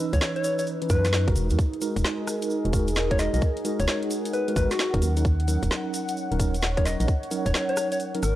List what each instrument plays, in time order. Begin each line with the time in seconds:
Already playing: ambient pad D#4 B4 E6
0.00 tine electric piano E3 C#4 D#4 B4
0.13 fm bass C#2, soft synth lead C#5, kick, closed hi-hat, shaker
0.21 soft synth lead C#5, snare, shaker
0.36 soft synth lead C#5, closed hi-hat
0.44 soft synth lead C#5, open hi-hat, shaker
0.59 soft synth lead C#5, closed hi-hat, shaker
0.67 open hi-hat, shaker
0.82 tine electric piano E3 C#4 D#4 B4, closed hi-hat
0.90 fm bass F#2, tine electric piano E3 C#4 D#4 B4, soft synth lead B4, kick, open hi-hat, shaker
1.05 snare, closed hi-hat, shaker
1.13 snare, shaker
1.28 fm bass G#1, tine electric piano G#3 D#4 F#4 A#4, kick, closed hi-hat
1.36 fm bass E1, open hi-hat, shaker
1.46 ambient pad G#4, shaker
1.50 fm bass E2, tine electric piano G#3 D#4 F#4 A#4, closed hi-hat
1.56 ambient pad A#4, kick, shaker
1.73 closed hi-hat
1.81 tine electric piano G#3 D#4 F#4 A#4, open hi-hat, shaker
1.96 fm bass E1, kick, closed hi-hat, shaker
2.04 snare, shaker
2.27 cross-stick, open hi-hat, shaker
2.42 closed hi-hat, shaker
2.50 shaker
2.65 fm bass E1, tine electric piano G#3 D#4 F#4 A#4, closed hi-hat
2.73 tine electric piano G#3 D#4 F#4 A#4, kick, open hi-hat, shaker
2.88 ambient pad F#5, closed hi-hat, shaker
2.95 snare, shaker
3.11 tine electric piano G#3 D#4 F#4 A#4, soft synth lead C#5, kick, closed hi-hat
3.19 soft synth lead D#5, snare, open hi-hat, shaker
3.34 fm bass B1, tine electric piano G#3 D#4 F#4 A#4, soft synth lead D#5, closed hi-hat, shaker
3.41 kick, shaker
3.57 closed hi-hat
3.65 tine electric piano G#3 D#4 F#4 A#4, open hi-hat, shaker
3.80 fm bass E1, soft synth lead C#5, kick, closed hi-hat, shaker
3.87 soft synth lead C#5, snare, shaker
4.03 closed hi-hat
4.11 open hi-hat, shaker
4.25 closed hi-hat, shaker
4.33 soft synth lead B4, open hi-hat, shaker
4.48 tine electric piano G#3 D#4 F#4 A#4, closed hi-hat
4.56 fm bass G#1, tine electric piano G#3 D#4 F#4 A#4, soft synth lead B4, kick, open hi-hat, shaker
4.71 soft synth lead F#4, snare, closed hi-hat, shaker
4.79 snare, shaker
4.94 fm bass E1, tine electric piano F#3 C#4 D#4 A#4, kick, closed hi-hat
5.02 fm bass D#2, open hi-hat, shaker
5.17 tine electric piano F#3 C#4 D#4 A#4, closed hi-hat, shaker
5.25 kick, shaker
5.40 closed hi-hat
5.48 tine electric piano F#3 C#4 D#4 A#4, open hi-hat, shaker
5.63 fm bass D#1, kick, closed hi-hat, shaker
5.71 ambient pad C#5, snare, shaker
5.94 open hi-hat, shaker
6.09 closed hi-hat, shaker
6.17 shaker
6.31 fm bass D#1, tine electric piano F#3 C#4 D#4 A#4, closed hi-hat
6.40 tine electric piano F#3 C#4 D#4 A#4, kick, open hi-hat, shaker
6.54 closed hi-hat, shaker
6.62 snare, shaker
6.77 tine electric piano F#3 C#4 D#4 A#4, soft synth lead C#5, kick, closed hi-hat
6.85 soft synth lead D#5, snare, open hi-hat, shaker
7.00 fm bass A#1, tine electric piano F#3 C#4 D#4 A#4, soft synth lead D#5, closed hi-hat, shaker
7.08 kick, shaker
7.23 closed hi-hat
7.31 tine electric piano F#3 C#4 D#4 A#4, open hi-hat, shaker
7.46 fm bass D#1, soft synth lead C#5, kick, closed hi-hat, shaker
7.54 soft synth lead C#5, snare, shaker
7.69 soft synth lead C#5, closed hi-hat
7.77 soft synth lead C#5, cross-stick, open hi-hat, shaker
7.92 soft synth lead C#5, closed hi-hat, shaker
8.00 open hi-hat, shaker
8.15 tine electric piano F#3 C#4 D#4 A#4, closed hi-hat
8.23 fm bass G#1, soft synth lead A#4, cross-stick, open hi-hat, shaker